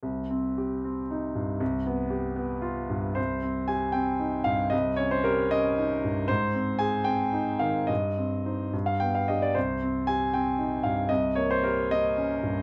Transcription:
\new Staff \with { instrumentName = "Grand piano" } { \time 6/8 \key c \minor \tempo 4. = 77 << { r2. | r2. | c''4 aes''8 g''4 f''8 | ees''8 des''16 c''16 bes'8 ees''4. |
c''4 aes''8 g''4 f''8 | ees''4. r16 f''16 g''16 f''16 ees''16 d''16 | c''4 aes''8 g''4 f''8 | ees''8 des''16 c''16 bes'8 ees''4. | } \\ { c,8 c'8 g'8 c'8 ees'8 g,8 | c,8 b8 g'8 b8 f'8 g,8 | c,8 c'8 g'8 c'8 ees'8 g,8 | c,8 des'8 g'8 des'8 ees'8 g,8 |
aes,8 c'8 aes'8 c'8 ees'8 ees8 | g,8 c'8 <ees' c''>8 g,8 b8 <d' g'>8 | c,8 c'8 g'8 c'8 ees'8 g,8 | c,8 bes8 g'8 bes8 des'8 g,8 | } >> }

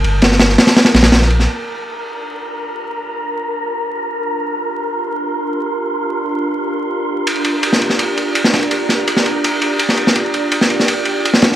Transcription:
<<
  \new Staff \with { instrumentName = "Synth texture" } { \time 4/4 \key g \minor \tempo 4 = 166 <bes' a''>1 | <bes' bes''>1~ | <bes' bes''>1 | c'''1~ |
c'''1 | bes''1~ | bes''1 | g''1 | }
  \new Staff \with { instrumentName = "Analog synth pad" } { \time 4/4 \key g \minor << { r1 | bes'1~ | bes'1~ | bes'1~ |
bes'1 | d''1~ | d''1~ | d''1 | } \\ { r1 | <d' f' g'>1~ | <d' f' g'>1~ | <d' f' g'>1~ |
<d' f' g'>1~ | <d' f' g'>1~ | <d' f' g'>1~ | <d' f' g'>1 | } >> }
  \new Staff \with { instrumentName = "Sub bass" } { \clef bass \time 4/4 \key g \minor g,,4. r4 bes,,4. | r1 | r1 | r1 |
r1 | r1 | r1 | r1 | }
  \new DrumStaff \with { instrumentName = "Drums" } \drummode { \time 4/4 cymr8 <cymr sn>16 sn16 <cymr sn>16 sn16 <cymr sn>16 <cymr sn>16 <cymr sn>16 <cymr sn>16 <cymr sn>16 <cymr sn>16 <cymr sn>16 sn16 cymr16 sn16 | r4 r4 r4 r4 | r4 r4 r4 r4 | r4 r4 r4 r4 |
r4 r4 r4 r4 | cymr16 cymr16 cymr8 cymr16 sn16 cymr16 sn16 cymr8 cymr8 cymr16 sn16 <cymr sn>16 cymr16 | cymr8 <cymr sn>8 cymr16 sn16 cymr8 cymr8 cymr8 cymr16 sn16 cymr16 sn16 | cymr16 cymr16 cymr8 cymr16 sn16 cymr16 sn16 cymr8 cymr8 cymr16 sn16 <cymr sn>16 sn16 | }
>>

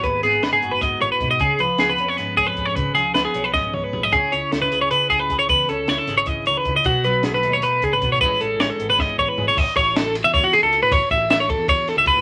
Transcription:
<<
  \new Staff \with { instrumentName = "Clean electric guitar" } { \time 7/8 \key a \lydian \tempo 4 = 154 b'8 gis'8 b'16 gis'8 b'16 dis''8 cis''16 b'8 dis''16 | gis'8 b'8 gis'16 b'8 cis''16 b'8 gis'16 b'8 cis''16 | b'8 gis'8 b'16 gis'8 b'16 dis''8 cis''16 b'8 dis''16 | gis'8 cis''8 a'16 b'8 cis''16 b'8 gis'16 b'8 cis''16 |
b'8 a'8 cis''16 a'8 cis''16 dis''8 cis''16 b'8 dis''16 | fis'8 b'8 gis'16 b'8 cis''16 b'8 gis'16 b'8 cis''16 | b'8 a'8 cis''16 a'8 b'16 dis''8 cis''16 b'8 cis''16 | dis''8 cis''8 a'8 r16 e''16 cis''16 fis'16 gis'16 a'8 b'16 |
cis''8 e''8 e''16 cis''16 a'8 cis''8 a'16 e''16 b'8 | }
  \new Staff \with { instrumentName = "Clean electric guitar" } { \time 7/8 \key a \lydian << { r4 dis'8 fis'2 | r4 b8 cis'4 cis'8 gis'8 | r4 b8 cis'4 cis'8 gis'8 | <cis' e' gis'>4 e'8 gis'4 gis'8 gis'8 |
r4 e'8 gis'2 | r4 a8 dis'2 | <e gis cis' gis'>4 gis8 b16 cis'8. cis'8 gis'8 | r2. r8 |
r2. r8 | } \\ { gis,8 b4. gis,8 a,8 b,8 | cis8 eis4. gis,4. | cis8 eis4. gis,4. | cis8 cis'4. cis4. |
cis8 cis'4. e8 dis8 cis8 | b,8 fis4. dis8 cis8 b,8 | r8 e4. e,4. | r2. r8 |
r2. r8 | } >> }
  \new Staff \with { instrumentName = "Fingered electric bass" } { \clef bass \time 7/8 \key a \lydian dis,8 gis,,8 gis,,16 r16 fis,,4 gis,,16 r16 gis,8 | cis,16 r16 cis,16 r16 cis,8 eis,8 r8. eis,8. | gis,,8 cis,8 cis,16 r16 b,,4 cis,16 r16 b,,8 | cis,16 r16 cis,16 r16 cis,8 cis,8 r8. cis,8. |
e,8 cis,8 cis,16 r16 gis,,4 cis,16 r16 cis,8 | b,,16 r16 b,,16 r16 b,,8 dis,8 r8. gis,,8. | a,,8 a,,8 a,,16 r16 gis,,4 a,,16 r16 gis,,8 | a,,16 r16 a,,4~ a,,16 e,4 cis,8 a,16 |
a,,16 r16 a,,4~ a,,16 e,4 cis,8 a,16 | }
  \new DrumStaff \with { instrumentName = "Drums" } \drummode { \time 7/8 <hh bd>8 <hh sn>8 <hh sn>8 hh8 <hh bd sn>8 hh8 <hh bd>8 | <hh bd>8 hh8 <hh sn>8 hh8 <hh sn>8 <hh bd>8 <hh bd>8 | <hh bd>8 <hh sn>8 <hh sn>8 hh8 <bd sn>8 toml8 tomfh8 | <hh bd>8 hh8 <hh sn>8 hh8 hh8 <hh bd>8 <hh bd>8 |
<hh bd>8 hh8 <hh sn>8 <hh sn>8 <hh bd>8 hh8 <hh bd>8 | <hh bd>8 hh8 <hh sn>8 hh8 hh8 <hh bd>8 <hh bd>8 | <hh bd>8 hh8 <hh sn>8 hh8 <bd sn>8 bd8 tomfh8 | <cymc bd>8 <bd cymr>8 <cymr sn>8 <cymr sn>8 <bd cymr>8 <cymr sn>8 cymr8 |
<bd cymr>8 <bd cymr>8 <cymr sn>8 <bd cymr>8 <bd cymr>8 <cymr sn>8 <bd cymr>8 | }
>>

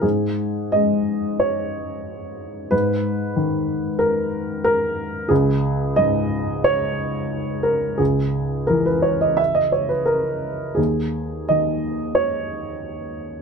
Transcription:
<<
  \new Staff \with { instrumentName = "Upright piano" } { \time 4/4 \key gis \minor \tempo 4 = 91 gis'4 dis''4 cis''2 | b'2 ais'4 ais'4 | gis'4 dis''4 cis''4. ais'8 | gis'4 ais'16 b'16 cis''16 dis''16 e''16 dis''16 cis''16 b'16 ais'4 |
gis'4 dis''4 cis''2 | }
  \new Staff \with { instrumentName = "Upright piano" } { \clef bass \time 4/4 \key gis \minor gis,4 gis2. | gis,4 dis2. | cis,4 gis,2. | cis,4 e2. |
dis,4 dis2. | }
>>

